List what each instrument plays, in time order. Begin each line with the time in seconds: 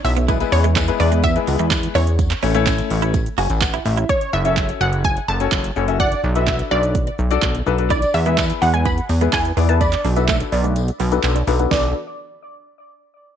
0.04 analog synth bass B1, synth pluck E5, muted clean electric guitar stroke, open hi-hat, tambourine, shaker
0.17 clean electric guitar B3, closed hi-hat, shaker
0.28 grand piano G#3 B3 E4 G#4 B4, clean electric guitar E4, kick, closed hi-hat, tambourine, shaker
0.40 grand piano G#3 B3 E4 G#4 B4, closed hi-hat, tambourine, shaker
0.52 analog synth bass E2, synth pluck C#5, muted clean electric guitar stroke, open hi-hat, tambourine, shaker
0.64 clean electric guitar G#3, closed hi-hat, shaker
0.76 grand piano G#3 B3 E4 G#4 B4, muted clean electric guitar stroke, kick, clap, closed hi-hat, tambourine, shaker
0.88 grand piano G#3 B3 E4 G#4 B4, closed hi-hat, shaker
1.00 analog synth bass E2, clean electric guitar B3, synth pluck D5, open hi-hat, tambourine, shaker
1.12 clean electric guitar G#3, closed hi-hat, shaker
1.24 clean electric guitar B3, synth pluck E5, kick, closed hi-hat, tambourine, shaker
1.35 grand piano G#3 B3 E4 G#4 B4, closed hi-hat, shaker
1.47 analog synth bass C#2, muted clean electric guitar stroke, open hi-hat, tambourine, shaker
1.59 analog synth bass E2, clean electric guitar G#3, closed hi-hat, shaker
1.71 kick, clap, closed hi-hat, tambourine, shaker
1.83 closed hi-hat, shaker
1.95 analog synth bass E2, clean electric guitar B3, synth pluck C#5, open hi-hat, tambourine, shaker
2.07 closed hi-hat, shaker
2.19 kick, closed hi-hat, tambourine, shaker
2.31 muted clean electric guitar stroke, clap, closed hi-hat, shaker
2.43 analog synth bass A1, grand piano A3 C#4 E4 A4 C#5, clean electric guitar C#4, open hi-hat, tambourine, shaker
2.54 grand piano A3 C#4 E4 A4 C#5, clean electric guitar A3, closed hi-hat, tambourine, shaker
2.67 clean electric guitar C#4, kick, clap, closed hi-hat, tambourine, shaker
2.78 muted clean electric guitar stroke, closed hi-hat, tambourine, shaker
2.90 analog synth bass A1, open hi-hat, tambourine, shaker
3.02 clean electric guitar E4, closed hi-hat, shaker
3.14 kick, closed hi-hat, tambourine, shaker
3.26 closed hi-hat, shaker
3.38 analog synth bass F#1, clean electric guitar F#4, grand piano G#5, open hi-hat, tambourine, shaker
3.50 analog synth bass A1, closed hi-hat, tambourine, shaker
3.61 grand piano F#5, kick, clap, closed hi-hat, tambourine, shaker
3.74 clean electric guitar E4, closed hi-hat, shaker
3.85 analog synth bass A1, grand piano E5, muted clean electric guitar stroke, open hi-hat, tambourine, shaker
3.97 clean electric guitar E4, closed hi-hat, shaker
4.09 analog synth lead C#5, synth pluck C#5, kick, closed hi-hat, shaker
4.21 closed hi-hat, shaker
4.33 analog synth bass F#1, synth pluck E5, shaker
4.45 grand piano C#4 F#4 A4 C#5, analog synth lead E5, closed hi-hat, shaker
4.57 kick, clap, closed hi-hat, shaker
4.69 closed hi-hat, shaker
4.81 analog synth bass F#1, analog synth lead F#5, synth pluck F#5, shaker
4.93 closed hi-hat, shaker
5.04 synth pluck G#5, kick, closed hi-hat, shaker
5.17 closed hi-hat, shaker
5.28 analog synth bass F#1, synth pluck A5, shaker
5.40 grand piano C#4 F#4 A4 C#5, closed hi-hat, shaker
5.52 analog synth bass F#1, kick, clap, closed hi-hat, shaker
5.64 closed hi-hat, shaker
5.76 analog synth bass F#1, grand piano C#4 F#4 A4 C#5, shaker
5.88 grand piano C#4 F#4 A4 E5, closed hi-hat, shaker
6.00 analog synth lead D5, synth pluck F#5, kick, closed hi-hat, shaker
6.12 closed hi-hat, shaker
6.24 analog synth bass B1, shaker
6.35 grand piano D4 F#4 A4 B4, analog synth lead E5, closed hi-hat, shaker
6.47 kick, clap, closed hi-hat, shaker
6.59 closed hi-hat, shaker
6.71 analog synth bass B1, synth pluck D5, analog synth lead D5, shaker
6.83 closed hi-hat, shaker
6.95 kick, closed hi-hat, shaker
7.07 closed hi-hat, shaker
7.19 analog synth bass B1, shaker
7.31 grand piano D4 F#4 A4 D5, closed hi-hat, shaker
7.42 analog synth bass B1, kick, clap, closed hi-hat, shaker
7.55 closed hi-hat, shaker
7.66 analog synth bass B1, grand piano D4 F#4 A4 B4, shaker
7.78 grand piano D4 F#4 A4 B4, closed hi-hat, shaker
7.90 clean electric guitar E4, analog synth lead D5, synth pluck D5, kick, closed hi-hat, tambourine, shaker
8.02 closed hi-hat, tambourine, shaker
8.14 analog synth bass E2, synth pluck E5, muted clean electric guitar stroke, open hi-hat, tambourine, shaker
8.26 clean electric guitar G#3, grand piano B3 E4 G#4 B4, analog synth lead E5, closed hi-hat, shaker
8.38 kick, clap, closed hi-hat, tambourine, shaker
8.50 closed hi-hat, shaker
8.62 analog synth bass E2, clean electric guitar B3, synth pluck F#5, analog synth lead F#5, open hi-hat, tambourine, shaker
8.74 clean electric guitar G#3, synth pluck G#5, closed hi-hat, shaker
8.85 clean electric guitar B3, synth pluck B5, kick, closed hi-hat, tambourine, shaker
8.98 closed hi-hat, shaker
9.09 analog synth bass E2, muted clean electric guitar stroke, open hi-hat, tambourine, shaker
9.21 clean electric guitar G#3, grand piano B3 E4 G#4 B4, closed hi-hat, tambourine, shaker
9.33 analog synth bass E2, synth pluck G#5, kick, clap, closed hi-hat, tambourine, shaker
9.45 closed hi-hat, shaker
9.57 analog synth bass E2, grand piano B3 E4 G#4 D5, clean electric guitar B3, open hi-hat, tambourine, shaker
9.69 grand piano B3 E4 G#4 B4, synth pluck A5, closed hi-hat, shaker
9.81 analog synth lead D5, synth pluck B5, kick, closed hi-hat, tambourine, shaker
9.93 muted clean electric guitar stroke, clap, closed hi-hat, shaker
10.05 analog synth bass B1, clean electric guitar D4, open hi-hat, tambourine, shaker
10.16 clean electric guitar B3, grand piano D4 F#4 A4 B4, analog synth lead E5, closed hi-hat, tambourine, shaker
10.28 clean electric guitar A3, kick, clap, closed hi-hat, tambourine, shaker
10.40 muted clean electric guitar stroke, closed hi-hat, tambourine, shaker
10.52 analog synth bass B1, analog synth lead D5, open hi-hat, tambourine, shaker
10.64 clean electric guitar A3, closed hi-hat, shaker
10.76 closed hi-hat, tambourine, shaker
10.88 closed hi-hat, shaker
11.00 analog synth bass B1, clean electric guitar B3, open hi-hat, tambourine, shaker
11.11 grand piano D4 F#4 A4 B4, closed hi-hat, tambourine, shaker
11.23 analog synth bass B1, clap, closed hi-hat, tambourine, shaker
11.36 clean electric guitar D4, closed hi-hat, shaker
11.47 analog synth bass B1, grand piano D4 F#4 A4 B4, muted clean electric guitar stroke, open hi-hat, tambourine, shaker
11.59 clean electric guitar B3, grand piano D4 F#4 A4 B4, closed hi-hat, shaker
11.71 analog synth bass B1, clean electric guitar B3, grand piano D4, analog synth lead D5, synth pluck D6, kick, snare, tambourine